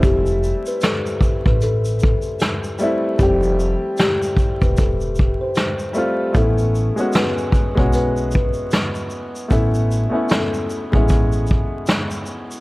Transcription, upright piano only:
0.00 0.92 G3 medium
0.00 6.37 G#3 soft
0.00 0.92 A3 medium
0.00 0.93 C4 medium
0.00 0.94 E4 loud
2.78 3.08 G3 medium
2.78 3.09 A3 medium
2.78 3.10 C4 medium
2.83 3.10 E4 medium
3.18 4.27 G3 medium
3.18 4.28 A3 medium
3.18 4.29 C4 medium
3.23 4.30 G4 medium
5.93 6.23 G3 medium
5.93 6.24 A3 medium
5.93 6.25 C4 medium
5.98 6.26 F4 medium
6.33 6.74 A3 medium
6.33 6.75 B3 medium
6.33 6.76 C#4 medium
6.37 6.76 E4 medium
6.96 7.48 G#3 medium
6.96 7.49 B3 medium
6.96 7.50 C#4 medium
7.01 7.50 F#4 medium
7.75 8.81 G#3 medium
7.75 8.82 B3 medium
7.75 8.82 C#4 medium
7.80 8.83 F#4 medium
9.48 9.90 A3 medium
9.48 9.91 B3 medium
9.48 9.91 C#4 medium
9.53 9.92 E4 medium
10.10 10.63 A3 medium
10.10 10.63 B3 medium
10.10 10.64 C#4 medium
10.14 10.65 E4 medium
10.92 11.97 G#3 medium
10.92 11.98 B3 medium
10.92 11.99 C#4 medium
10.97 11.99 E4 medium

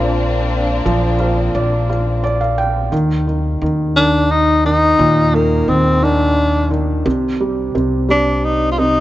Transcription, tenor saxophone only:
3.96 4.33 D4 medium
4.31 4.65 D#4 medium
4.66 5.36 D#4 medium
5.34 5.70 A#3 medium
5.69 6.05 C4 medium
6.04 6.81 D4 medium
8.11 8.46 D4 medium
8.44 8.71 D#4 medium
8.72 8.80 F4 medium
8.79 9.00 D#4 medium

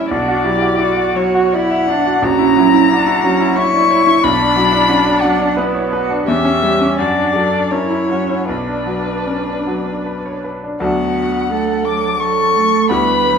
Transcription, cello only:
0.00 0.12 E4 medium
0.11 0.47 F#4 medium
0.45 0.81 G4 medium
0.80 1.56 F#4 medium
1.55 1.89 E4 medium
1.90 2.25 D4 medium
2.23 2.91 C#4 medium
2.91 3.59 F#4 medium
3.58 4.26 E4 medium
4.24 4.59 D4 medium
4.57 4.91 E4 loud
4.89 5.25 F#4 medium
5.23 5.58 D4 medium
5.57 5.93 E4 medium
5.92 6.25 F#4 medium
6.26 7.00 G4 medium
6.98 7.36 F#4 medium
7.34 7.73 A4 medium
7.72 8.09 A#4 medium
8.09 8.52 F#4 medium
8.50 10.46 D4 medium
10.81 11.52 B3 medium
11.50 11.87 A3 medium
11.86 12.20 F#3 medium
12.21 12.57 F#3 medium
12.56 12.92 A3 medium
12.90 13.26 G3 medium
13.25 13.38 F#3 medium

